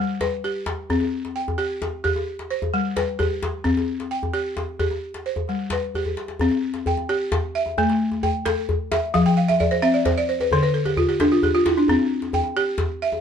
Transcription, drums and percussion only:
0.21 djembe slap, djembe tone
0.66 djembe slap, djembe tone
0.90 djembe bass
1.00 djembe tone
1.13 djembe slap
1.25 djembe slap
1.37 djembe slap
1.48 djembe slap, djembe tone, djembe bass
1.82 djembe slap, djembe tone
2.05 djembe slap, djembe bass
2.16 djembe tone
2.39 djembe slap
2.62 djembe tone, djembe bass
2.97 djembe slap, djembe tone
3.20 djembe bass
3.43 djembe slap, djembe tone
3.65 djembe slap, djembe bass
3.77 djembe tone
3.89 djembe slap
4.00 djembe slap
4.23 djembe slap, djembe tone, djembe bass
4.57 djembe slap, djembe tone
4.69 djembe slap
4.79 djembe bass
4.91 djembe tone
5.14 djembe slap
5.36 djembe slap, djembe tone, djembe bass
5.48 djembe slap
5.70 djembe slap, djembe tone
5.82 djembe slap
5.95 djembe bass
6.06 djembe bass
6.17 djembe slap
6.28 djembe slap
6.39 djembe bass
6.51 djembe tone
6.74 djembe slap
6.86 djembe bass
6.97 djembe tone
7.32 djembe slap, djembe tone, djembe bass
7.66 djembe tone
7.78 djembe bass
7.90 djembe slap
8.12 djembe slap, djembe tone
8.23 djembe bass
8.46 djembe slap, djembe tone
8.57 djembe slap
8.69 djembe bass
8.92 djembe slap, djembe tone
9.15 djembe bass
9.27 djembe tone
9.49 djembe slap
9.60 djembe bass
9.72 djembe tone
10.06 djembe slap, djembe tone, djembe bass
10.40 djembe tone
10.51 djembe bass
10.85 djembe slap, djembe tone
10.97 djembe bass
11.20 djembe slap, djembe tone
11.32 djembe slap
11.43 djembe bass
11.66 djembe slap, djembe tone
11.88 djembe bass
11.99 djembe tone
12.22 djembe slap
12.33 djembe bass
12.44 djembe tone
12.78 djembe slap, djembe tone, djembe bass
13.12 djembe tone

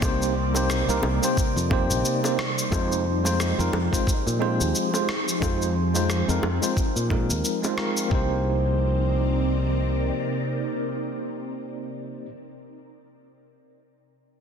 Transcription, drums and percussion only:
0.02 kick, high bongo, cabasa
0.22 cabasa
0.55 high bongo, cabasa
0.70 cross-stick, cabasa
0.89 cabasa
1.03 high bongo
1.23 cabasa
1.37 kick, cabasa
1.57 cabasa
1.71 kick, high bongo
1.91 cabasa
2.05 cabasa
2.24 high bongo, cabasa
2.39 cross-stick
2.58 cabasa
2.72 kick, high bongo, cabasa
2.92 cabasa
3.25 high bongo, cabasa
3.40 cross-stick, cabasa
3.60 cabasa
3.73 high bongo
3.93 kick, cabasa
4.07 kick, cabasa
4.27 cabasa
4.42 high bongo
4.61 cabasa
4.75 cabasa
4.94 high bongo, cabasa
5.09 cross-stick
5.29 cabasa
5.42 kick, high bongo, cabasa
5.62 cabasa
5.95 high bongo, cabasa
6.10 cross-stick, cabasa
6.29 cabasa
6.43 high bongo
6.63 cabasa
6.77 kick, cabasa
6.97 cabasa
7.10 kick, high bongo
7.30 cabasa
7.45 cabasa
7.64 high bongo, cabasa
7.78 cross-stick
7.97 cabasa
8.11 kick

